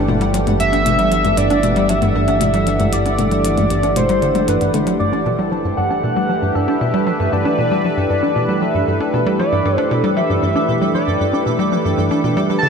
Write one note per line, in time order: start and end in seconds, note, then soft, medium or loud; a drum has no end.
0.00 4.97 G1 medium
0.00 4.98 E3 medium
0.00 5.01 G3 medium
0.00 4.99 A3 medium
0.00 5.00 D4 medium
0.00 5.00 G4 medium
0.00 4.99 D5 medium
0.00 5.02 F#5 medium
0.08 0.20 B2 loud
0.08 high tom soft
0.21 0.33 G3 loud
0.21 closed hi-hat soft
0.34 0.39 F#3 medium
0.34 closed hi-hat medium
0.47 0.56 G2 medium
0.47 closed hi-hat soft
0.47 high tom soft
0.60 0.72 G2 medium
0.60 1.39 E5 loud
0.60 closed hi-hat medium
0.73 0.82 D4 medium
0.73 closed hi-hat soft
0.86 0.98 B2 loud
0.86 closed hi-hat medium
0.86 high tom soft
0.99 1.11 G3 loud
0.99 closed hi-hat soft
1.12 1.17 F#3 medium
1.12 closed hi-hat medium
1.25 1.34 G2 loud
1.25 closed hi-hat soft
1.25 high tom soft
1.37 1.50 G2 loud
1.37 1.89 D5 loud
1.37 closed hi-hat medium
1.50 1.60 D4 medium
1.50 closed hi-hat soft
1.63 1.76 B2 loud
1.63 closed hi-hat medium
1.63 high tom soft
1.76 1.89 G3 loud
1.76 closed hi-hat soft
1.89 1.95 F#3 medium
1.89 2.94 E5 loud
1.89 closed hi-hat medium
2.02 2.11 G2 loud
2.02 closed hi-hat soft
2.02 high tom soft
2.15 2.27 G2 loud
2.28 2.37 D4 medium
2.28 closed hi-hat soft
2.41 2.53 B2 loud
2.41 closed hi-hat medium
2.41 high tom soft
2.54 2.66 G3 loud
2.54 closed hi-hat soft
2.67 2.72 F#3 medium
2.67 closed hi-hat medium
2.80 2.89 G2 loud
2.80 closed hi-hat soft
2.80 high tom soft
2.93 3.05 G2 loud
2.93 3.44 D5 loud
2.93 closed hi-hat medium
3.06 3.15 D4 medium
3.06 closed hi-hat soft
3.19 3.31 B2 medium
3.19 closed hi-hat medium
3.19 high tom soft
3.31 3.44 G3 loud
3.31 closed hi-hat soft
3.44 3.50 F#3 medium
3.44 3.98 D5 loud
3.44 closed hi-hat medium
3.57 3.67 G2 medium
3.57 closed hi-hat soft
3.57 high tom soft
3.70 3.83 G2 loud
3.70 closed hi-hat medium
3.83 3.92 D4 medium
3.83 closed hi-hat soft
3.96 4.09 B2 loud
3.96 4.50 C5 medium
3.96 closed hi-hat medium
3.96 high tom soft
4.09 4.21 G3 loud
4.09 closed hi-hat soft
4.22 4.31 D3 medium
4.22 closed hi-hat soft
4.35 4.41 G3 medium
4.35 closed hi-hat soft
4.35 high tom soft
4.48 4.57 G2 loud
4.48 4.87 B4 medium
4.48 closed hi-hat medium
4.61 4.70 G2 medium
4.61 closed hi-hat soft
4.74 4.86 D3 medium
4.74 closed hi-hat medium
4.74 high tom soft
4.87 4.96 F#3 medium
4.87 closed hi-hat soft
4.99 5.12 G2 loud
4.99 12.69 E3 medium
4.99 12.69 A4 medium
4.99 5.48 D5 loud
4.99 9.16 A5 medium
5.13 5.22 D4 medium
5.17 12.69 G4 medium
5.26 5.38 B2 loud
5.39 5.51 G3 loud
5.51 5.57 F#3 medium
5.51 12.69 A3 medium
5.64 5.74 G2 medium
5.77 5.90 G2 loud
5.77 6.57 F#5 loud
5.88 12.69 D4 medium
5.88 6.00 D4 medium
5.88 12.69 B4 medium
6.03 6.15 B2 loud
6.16 6.28 G3 loud
6.29 6.35 F#3 medium
6.42 6.51 G2 loud
6.55 6.67 G2 loud
6.55 7.06 E5 loud
6.68 6.77 D4 medium
6.81 6.93 B2 loud
6.94 7.06 G3 loud
7.06 7.12 F#3 medium
7.06 7.34 E5 loud
7.20 7.29 G2 loud
7.32 7.45 G2 loud
7.32 8.10 D5 loud
7.45 7.54 D4 medium
7.58 7.71 B2 loud
7.71 7.83 G3 medium
7.84 7.90 F#3 medium
7.97 8.06 G2 loud
8.10 8.22 G2 loud
8.10 8.63 D5 medium
8.23 8.32 D4 medium
8.36 8.48 B2 loud
8.49 8.61 G3 loud
8.62 8.67 F#3 medium
8.62 9.01 E5 medium
8.74 8.84 G2 loud
8.87 9.00 G2 medium
9.00 9.10 D4 medium
9.13 9.26 B2 loud
9.13 12.69 D6 medium
9.26 9.39 G3 loud
9.39 9.45 F#3 medium
9.39 9.87 D5 loud
9.52 9.61 G2 medium
9.65 9.77 G2 loud
9.78 9.87 D4 medium
9.91 10.03 B2 loud
10.04 10.16 G3 loud
10.17 10.22 F#3 medium
10.17 10.90 E5 loud
10.30 10.39 G2 loud
10.42 10.55 G2 loud
10.55 10.65 D4 medium
10.68 10.81 B2 loud
10.81 10.94 G3 loud
10.94 11.00 F#3 medium
10.94 11.43 D5 loud
11.07 11.17 G2 loud
11.20 11.33 G2 loud
11.33 11.42 D4 medium
11.46 11.58 B2 medium
11.59 11.71 G3 loud
11.72 11.77 F#3 medium
11.85 11.94 G2 loud
11.98 12.10 G2 loud
12.11 12.20 D4 medium
12.24 12.36 B2 loud
12.37 12.49 G3 loud
12.50 12.59 G3 medium
12.58 12.69 A5 loud
12.63 12.69 D3 loud